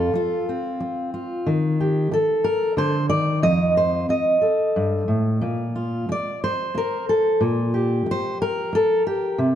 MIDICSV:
0, 0, Header, 1, 3, 480
1, 0, Start_track
1, 0, Tempo, 660066
1, 1060, Time_signature, 3, 2, 24, 8
1, 6945, End_track
2, 0, Start_track
2, 0, Title_t, "Steel-string acoustic guitar"
2, 0, Program_c, 0, 25
2, 0, Note_on_c, 0, 41, 59
2, 0, Note_on_c, 0, 65, 75
2, 0, Note_on_c, 0, 69, 74
2, 91, Note_off_c, 0, 41, 0
2, 104, Note_off_c, 0, 65, 0
2, 112, Note_on_c, 0, 65, 60
2, 350, Note_off_c, 0, 69, 0
2, 356, Note_on_c, 0, 60, 37
2, 818, Note_off_c, 0, 65, 0
2, 827, Note_on_c, 0, 65, 40
2, 1063, Note_off_c, 0, 65, 0
2, 1065, Note_on_c, 0, 51, 61
2, 1067, Note_off_c, 0, 60, 0
2, 1312, Note_on_c, 0, 67, 39
2, 1532, Note_off_c, 0, 51, 0
2, 1544, Note_off_c, 0, 67, 0
2, 1552, Note_on_c, 0, 69, 64
2, 1777, Note_on_c, 0, 70, 67
2, 2013, Note_on_c, 0, 50, 50
2, 2016, Note_off_c, 0, 70, 0
2, 2023, Note_on_c, 0, 72, 80
2, 2248, Note_off_c, 0, 72, 0
2, 2249, Note_on_c, 0, 51, 47
2, 2251, Note_on_c, 0, 74, 83
2, 2254, Note_off_c, 0, 50, 0
2, 2263, Note_off_c, 0, 69, 0
2, 2489, Note_on_c, 0, 41, 56
2, 2493, Note_off_c, 0, 51, 0
2, 2493, Note_off_c, 0, 74, 0
2, 2496, Note_on_c, 0, 75, 88
2, 2736, Note_off_c, 0, 75, 0
2, 2744, Note_on_c, 0, 72, 78
2, 2965, Note_off_c, 0, 41, 0
2, 2979, Note_off_c, 0, 72, 0
2, 2982, Note_on_c, 0, 75, 68
2, 3211, Note_on_c, 0, 69, 35
2, 3462, Note_on_c, 0, 43, 52
2, 3691, Note_off_c, 0, 43, 0
2, 3694, Note_on_c, 0, 45, 47
2, 3909, Note_off_c, 0, 69, 0
2, 3937, Note_on_c, 0, 46, 59
2, 3938, Note_off_c, 0, 45, 0
2, 3944, Note_off_c, 0, 75, 0
2, 4186, Note_on_c, 0, 65, 37
2, 4425, Note_off_c, 0, 65, 0
2, 4427, Note_off_c, 0, 46, 0
2, 4449, Note_on_c, 0, 74, 78
2, 4677, Note_off_c, 0, 74, 0
2, 4681, Note_on_c, 0, 72, 75
2, 4927, Note_on_c, 0, 70, 76
2, 5155, Note_off_c, 0, 70, 0
2, 5158, Note_on_c, 0, 69, 57
2, 5386, Note_on_c, 0, 46, 64
2, 5391, Note_off_c, 0, 69, 0
2, 5394, Note_off_c, 0, 72, 0
2, 5628, Note_on_c, 0, 67, 40
2, 5854, Note_off_c, 0, 46, 0
2, 5899, Note_on_c, 0, 72, 85
2, 6118, Note_off_c, 0, 72, 0
2, 6121, Note_on_c, 0, 70, 79
2, 6345, Note_off_c, 0, 67, 0
2, 6363, Note_on_c, 0, 69, 78
2, 6590, Note_off_c, 0, 69, 0
2, 6593, Note_on_c, 0, 67, 61
2, 6824, Note_on_c, 0, 48, 62
2, 6828, Note_off_c, 0, 67, 0
2, 6831, Note_off_c, 0, 70, 0
2, 6945, Note_off_c, 0, 48, 0
2, 6945, End_track
3, 0, Start_track
3, 0, Title_t, "Muted steel-string acoustic guitar strokes"
3, 99, Note_on_c, 9, 29, 57
3, 172, Note_off_c, 9, 29, 0
3, 585, Note_on_c, 9, 29, 57
3, 658, Note_off_c, 9, 29, 0
3, 1537, Note_on_c, 9, 29, 54
3, 1610, Note_off_c, 9, 29, 0
3, 2974, Note_on_c, 9, 29, 55
3, 3046, Note_off_c, 9, 29, 0
3, 4427, Note_on_c, 9, 29, 56
3, 4499, Note_off_c, 9, 29, 0
3, 4905, Note_on_c, 9, 29, 55
3, 4977, Note_off_c, 9, 29, 0
3, 5862, Note_on_c, 9, 29, 59
3, 5935, Note_off_c, 9, 29, 0
3, 6346, Note_on_c, 9, 29, 55
3, 6419, Note_off_c, 9, 29, 0
3, 6945, End_track
0, 0, End_of_file